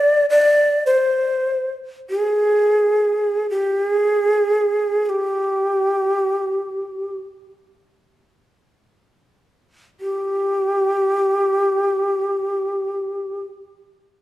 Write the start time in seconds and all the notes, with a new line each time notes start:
Already playing: D5
0.30 D5
0.86 C5
2.10 G#4
3.50 G4
3.86 G#4
5.06 G4 G#4
10.00 G4